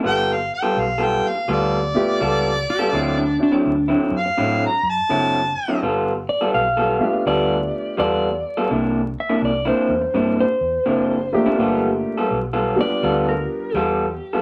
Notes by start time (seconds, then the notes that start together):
0.03 G1 G3 B3 F4 A4
0.07 G5
0.33 F5
0.54 G5
0.62 G3 B3 F4 A4
0.77 B1 F5
0.98 G3 B3 F4 A4
1.04 G5
1.28 F5
1.35 muted clean electric guitar stroke
1.48 D2 G3 B3 F4 A4
1.52 D5
1.94 A3 B3 F4 G4
2.21 C#2 G3 B3 F4 A4
2.70 G4
2.79 G3 B3 F4 A4
2.92 D2 D3 F#3 C4 E4 F4
3.18 D4
3.38 C4 D4 E4 F#4
3.43 D4
3.52 D3 F#3 C4 E4
3.66 D2
3.88 D3 F#3 C4 E4
4.11 F#2
4.17 F5
4.25 muted clean electric guitar stroke
4.37 A2 D3 F#3 C4 E4
4.66 A#5
4.83 F#2
4.90 A5
5.09 F#1 D3 F#3 C4 E4
5.68 D3 F#3 C4 E4
5.82 G1 G3 B3 F4 A4
6.29 D5
6.41 G3 B3 F4 A4
6.54 B1 F5
6.77 G3 B3 F4 A4
6.99 A3 B3 D4 F4 G4
7.13 muted clean electric guitar stroke
7.26 D2 G3 B3 F4 A4 D5
7.97 E2 G3 B3 F4 A4 D5
8.57 G3 B3 F4 A4
8.70 C2 C3 A#3 D4 E4
9.20 E5
9.29 C3 A#3 D4 E4
9.42 C2 D5
9.65 C3 A#3 D4 E4 C5
9.89 E2
10.01 muted clean electric guitar stroke
10.14 G2 C3 A#3 D4 E4
10.40 C5
10.61 E2
10.86 F#1 C3 A#3 D4 E4
11.33 A3 A#3 D4 F4 G4
11.46 C3 A#3 D4 E4
11.59 G1 G3 B3 F4 A4
12.17 G3 B3 F4 A4
12.31 B1
12.53 G3 B3 F4 A4
12.76 G3 B3 D4 F4 G4
12.81 D5
12.90 muted clean electric guitar stroke
13.03 D2 G3 B3 F4 A4
13.29 A#4
13.74 E2 G3 B3 F4 G4 A4
14.33 G3 B3 F4 A4